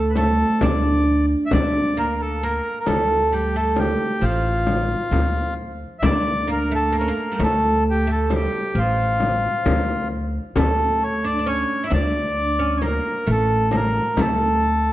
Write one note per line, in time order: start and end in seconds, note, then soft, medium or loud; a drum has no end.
0.00 0.42 D2 medium
0.00 0.14 A3 medium
0.00 0.12 A4 medium
0.10 0.17 B4 medium
0.15 0.63 A3 medium
0.15 0.63 A4 medium
0.15 frame drum medium
0.61 1.33 D2 medium
0.61 1.26 D4 medium
0.61 1.26 D5 medium
0.61 frame drum medium
1.46 1.52 E5 medium
1.51 2.59 D2 medium
1.51 1.99 D4 medium
1.51 1.99 D5 medium
1.51 frame drum medium
1.97 2.42 A#3 medium
1.97 2.21 A#4 medium
2.21 2.44 A4 medium
2.43 2.87 A#3 medium
2.43 2.79 A#4 medium
2.80 2.87 A#4 medium
2.86 3.94 D2 medium
2.86 3.29 A3 medium
2.86 3.34 A4 medium
2.86 frame drum medium
3.32 3.53 G3 medium
3.32 3.56 G4 medium
3.56 4.25 A3 medium
3.56 3.79 A4 medium
3.76 4.25 G4 medium
3.76 frame drum medium
4.21 4.93 A1 medium
4.21 5.54 F3 medium
4.21 5.54 F4 medium
4.67 frame drum medium
5.11 5.83 D2 medium
5.11 frame drum medium
5.99 7.09 D2 medium
5.99 6.50 D4 medium
5.99 6.05 E5 medium
5.99 frame drum medium
6.04 6.51 D5 medium
6.47 6.69 A#3 medium
6.52 6.74 A#4 medium
6.71 6.92 A3 medium
6.71 6.96 A4 medium
6.92 7.00 A#3 medium
6.98 7.08 C#4 medium
6.98 7.43 A#4 medium
7.08 7.39 A#3 medium
7.32 7.39 G3 medium
7.39 8.46 D2 medium
7.39 8.06 A3 medium
7.39 frame drum medium
7.44 7.84 A4 medium
7.90 8.11 G4 medium
8.07 8.30 A3 medium
8.12 8.33 A4 medium
8.30 8.77 G3 medium
8.30 frame drum medium
8.35 8.79 G4 medium
8.75 9.46 A1 medium
8.75 10.07 F3 medium
8.75 10.08 F4 medium
9.20 frame drum medium
9.66 10.37 D2 loud
9.66 frame drum medium
10.56 11.62 D2 medium
10.56 11.26 A3 medium
10.56 11.03 A4 medium
10.56 frame drum medium
11.03 11.25 C#5 medium
11.24 11.38 D4 medium
11.24 11.48 D5 medium
11.39 11.46 D4 medium
11.46 11.83 C#4 medium
11.46 11.87 C#5 loud
11.84 11.90 E4 medium
11.84 11.92 E5 medium
11.90 12.98 D2 medium
11.90 12.59 D4 medium
11.90 12.79 D5 medium
11.90 frame drum medium
12.59 12.83 C#4 medium
12.77 12.83 C#5 medium
12.81 13.26 A#3 medium
12.81 frame drum medium
12.86 13.30 A#4 medium
13.27 13.99 A1 loud
13.27 13.72 A3 medium
13.31 13.76 A4 medium
13.71 14.18 A#3 medium
13.71 frame drum medium
13.76 14.21 A#4 medium
14.17 14.89 D2 medium
14.17 14.93 A3 medium
14.17 14.93 A4 medium
14.17 frame drum medium